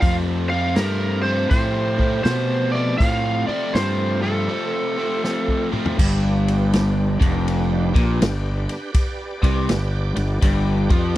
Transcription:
0.01 0.51 F2 loud
0.01 0.75 F2 medium
0.01 0.51 C3 medium
0.01 0.52 F3 medium
0.01 0.52 A3 medium
0.01 0.52 C4 loud
0.01 2.98 F4 medium
0.01 2.97 C5 medium
0.01 0.14 F5 medium
0.01 2.98 A5 medium
0.01 kick loud
0.01 open hi-hat soft
0.50 0.76 F2 medium
0.50 0.76 C3 medium
0.50 0.77 F3 medium
0.50 0.78 A3 medium
0.50 0.78 C4 medium
0.50 0.77 F5 medium
0.76 1.24 F2 medium
0.76 1.49 G2 medium
0.76 1.24 C3 medium
0.76 1.25 F3 medium
0.76 1.25 A3 medium
0.76 1.26 C4 medium
0.76 1.21 A#4 medium
0.76 snare medium
0.76 open hi-hat soft
1.23 1.50 F2 medium
1.23 1.50 C3 medium
1.23 1.50 F3 medium
1.23 1.51 A3 medium
1.23 1.51 C4 medium
1.23 1.49 C5 medium
1.50 1.96 F2 medium
1.50 2.24 A2 medium
1.50 1.98 C3 loud
1.50 1.98 F3 medium
1.50 1.98 A3 loud
1.50 1.99 C4 loud
1.50 2.21 C5 medium
1.50 kick loud
1.50 open hi-hat soft
1.98 2.23 F2 loud
1.98 2.24 C3 loud
1.98 2.24 F3 medium
1.98 2.24 A3 loud
1.98 2.24 C4 loud
1.98 kick medium
2.24 2.72 F2 medium
2.24 2.98 B2 medium
2.24 2.73 C3 medium
2.24 2.73 F3 medium
2.24 2.74 A3 medium
2.24 2.74 C4 loud
2.24 2.75 C5 medium
2.24 snare loud
2.24 open hi-hat soft
2.72 2.98 F2 medium
2.72 2.99 C3 medium
2.72 2.99 F3 medium
2.72 2.99 A3 medium
2.72 3.00 C4 loud
2.72 2.98 D5 medium
2.98 3.48 F2 medium
2.98 3.45 A2 medium
2.98 3.48 C3 medium
2.98 3.48 F3 medium
2.98 5.95 A3 medium
2.98 3.49 A3 loud
2.98 3.49 C4 medium
2.98 5.95 C4 medium
2.98 5.95 F4 medium
2.98 3.47 F5 medium
2.98 kick loud
2.98 open hi-hat medium
3.47 3.74 F2 medium
3.47 3.74 C3 medium
3.47 3.75 F3 medium
3.47 3.75 A3 medium
3.47 3.75 C4 medium
3.47 3.74 D5 medium
3.47 muted fingered electric bass stroke soft
3.74 4.22 F2 medium
3.74 4.47 G2 medium
3.74 4.22 C3 medium
3.74 4.22 F3 medium
3.74 4.23 A3 medium
3.74 4.23 C4 medium
3.74 4.22 C5 medium
3.74 snare medium
3.74 open hi-hat soft
4.22 4.47 F2 medium
4.22 4.48 C3 medium
4.22 4.48 F3 medium
4.22 4.48 A3 medium
4.22 4.49 C4 medium
4.22 5.67 A4 medium
4.48 4.96 F2 medium
4.48 4.96 C3 medium
4.48 4.97 F3 loud
4.48 4.97 A3 loud
4.48 4.98 C4 loud
4.97 5.22 F2 medium
4.97 5.23 C3 medium
4.97 5.23 F3 medium
4.97 5.23 A3 loud
4.97 5.24 C4 medium
5.23 5.70 F2 medium
5.23 5.71 C3 medium
5.23 5.71 F3 medium
5.23 5.71 A3 loud
5.23 5.72 C4 loud
5.23 snare medium
5.48 kick medium
5.72 5.96 F2 medium
5.72 5.96 C3 medium
5.72 5.97 F3 medium
5.72 5.97 A3 medium
5.72 5.97 C4 medium
5.72 mid tom medium
5.86 floor tom medium
5.98 7.17 G1 medium
5.98 7.19 G2 loud
5.98 8.92 D4 medium
5.98 8.91 G4 medium
5.98 8.91 B4 medium
5.98 kick loud
5.98 crash loud
6.48 ride medium
6.73 snare medium
6.73 ride medium
7.20 7.91 F1 medium
7.20 7.93 F2 loud
7.20 kick loud
7.20 ride medium
7.48 ride medium
7.95 8.19 A#1 loud
7.95 8.20 A#2 loud
7.95 kick loud
7.95 ride medium
8.21 8.66 G1 medium
8.21 8.59 G2 medium
8.21 snare loud
8.21 ride loud
8.69 ride medium
8.92 11.17 G4 medium
8.92 11.17 B4 medium
8.92 11.17 D5 medium
8.92 kick loud
8.92 ride loud
9.43 9.67 C2 loud
9.43 9.68 C3 loud
9.43 kick loud
9.43 ride medium
9.69 10.14 G1 medium
9.69 10.07 G2 medium
9.69 snare loud
9.69 ride loud
10.16 10.41 G1 medium
10.16 10.37 G2 medium
10.16 ride medium
10.42 10.87 G1 medium
10.42 10.89 G2 loud
10.42 kick loud
10.42 ride medium
10.90 11.14 F2 medium
10.90 11.16 F3 loud
10.90 kick loud
10.90 ride medium

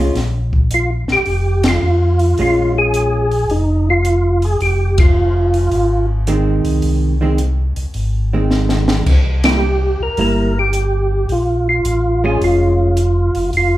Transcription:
0.00 0.11 C2 medium
0.00 0.14 G#3 medium
0.00 0.14 C#4 medium
0.00 0.14 F4 medium
0.15 1.05 A#1 medium
0.15 snare soft
0.15 open hi-hat soft
0.53 kick soft
0.71 0.90 F4 medium
0.71 closed hi-hat soft
1.08 1.18 A#1 soft
1.08 snare soft
1.12 1.68 G4 medium
1.26 1.79 F1 medium
1.26 open hi-hat soft
1.63 snare medium
1.63 ride medium
1.68 2.40 F4 medium
1.82 2.34 F2 medium
2.19 open hi-hat soft
2.38 3.46 A#1 medium
2.38 3.24 G#3 medium
2.38 3.25 C#4 medium
2.38 3.25 F4 medium
2.38 2.75 F4 medium
2.38 open hi-hat soft
2.78 3.53 G#4 loud
2.94 closed hi-hat soft
3.31 open hi-hat soft
3.49 4.57 F1 medium
3.49 3.89 D#4 medium
3.49 open hi-hat soft
3.90 4.46 F4 loud
4.05 closed hi-hat soft
4.42 4.61 G#4 medium
4.42 open hi-hat soft
4.60 5.68 F1 medium
4.60 5.00 G4 medium
4.60 open hi-hat soft
4.98 6.07 F4 medium
4.98 kick medium
4.98 ride medium
5.54 open hi-hat soft
5.71 6.61 G#1 medium
5.71 open hi-hat soft
6.27 7.14 D#3 medium
6.27 7.14 G#3 medium
6.27 7.14 C4 medium
6.27 closed hi-hat medium
6.64 6.82 C2 medium
6.64 open hi-hat soft
6.82 7.73 C2 medium
6.82 open hi-hat soft
7.21 7.37 D#3 medium
7.21 7.38 G#3 medium
7.21 7.38 C4 medium
7.38 closed hi-hat soft
7.76 7.86 C2 soft
7.76 open hi-hat soft
7.94 9.02 G#1 medium
7.94 open hi-hat soft
8.33 9.03 D#3 soft
8.33 9.04 G#3 medium
8.33 9.04 C4 medium
8.51 snare soft
8.69 snare medium
8.88 snare medium
9.06 9.96 C2 medium
9.06 kick medium
9.06 crash medium
9.44 9.61 G3 soft
9.44 9.61 A#3 soft
9.44 9.61 E4 medium
9.44 10.02 G4 loud
9.44 snare medium
9.44 ride medium
10.00 10.09 C2 soft
10.00 10.20 A#4 medium
10.17 11.25 G1 medium
10.17 10.52 G3 soft
10.17 10.52 A#3 medium
10.17 10.53 E4 medium
10.17 10.58 A#4 loud
10.17 open hi-hat soft
10.59 11.34 G4 medium
10.73 closed hi-hat medium
11.29 11.81 A#1 medium
11.29 11.68 F4 medium
11.29 open hi-hat soft
11.69 12.26 F4 medium
11.85 12.37 A1 medium
11.85 closed hi-hat soft
12.24 12.94 G#3 medium
12.24 12.94 C#4 medium
12.24 12.94 F4 medium
12.24 12.43 G#4 medium
12.41 13.31 F1 medium
12.41 13.50 F4 medium
12.41 open hi-hat soft
12.97 closed hi-hat medium
13.35 13.52 F#1 medium
13.35 open hi-hat soft
13.53 13.78 F1 medium
13.53 open hi-hat soft
13.57 13.78 F4 medium

